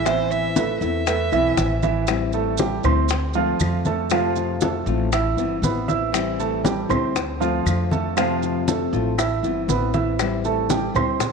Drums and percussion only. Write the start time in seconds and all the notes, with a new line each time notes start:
0.06 high bongo, high conga, claves, maracas
0.31 high conga, maracas
0.56 high bongo, high conga, maracas
0.82 high bongo, maracas
1.07 high bongo, high conga, claves, maracas
1.32 high bongo, high conga, maracas
1.57 high bongo, low bongo, high conga, maracas
1.83 high bongo, high conga, maracas
2.07 high bongo, high conga, claves, maracas
2.33 high bongo, high conga, maracas
2.58 high bongo, high conga, maracas
2.84 high conga, low conga, claves, maracas
3.08 high bongo, high conga, maracas
3.33 high bongo, high conga, maracas
3.60 high bongo, low bongo, high conga, claves, maracas
3.85 high bongo, high conga, maracas
4.10 high bongo, high conga, claves, maracas
4.36 high bongo, high conga, maracas
4.61 high bongo, high conga, maracas
4.87 high conga, maracas
5.12 high bongo, high conga, claves, maracas
5.38 high bongo, high conga, maracas
5.63 high bongo, low bongo, high conga, maracas
5.88 high bongo, high conga, maracas
6.14 high bongo, high conga, claves, maracas
6.39 high bongo, high conga, maracas
6.65 high bongo, high conga, maracas
6.90 high conga, low conga, claves, maracas
7.15 high bongo, high conga, maracas
7.40 high bongo, high conga, maracas
7.66 high bongo, low bongo, high conga, claves, maracas
7.91 high bongo, high conga, maracas
8.17 high bongo, high conga, claves, maracas
8.43 high bongo, high conga, maracas
8.68 high bongo, high conga, maracas
8.93 high conga, maracas
9.19 high bongo, high conga, claves, maracas
9.44 high bongo, high conga, maracas
9.69 high bongo, high conga, maracas
9.94 low bongo, high conga, maracas
10.19 high bongo, high conga, claves, maracas
10.45 high bongo, high conga, maracas
10.70 high bongo, high conga, maracas
10.95 high conga, low conga, claves, maracas
11.20 high bongo, high conga, low conga, maracas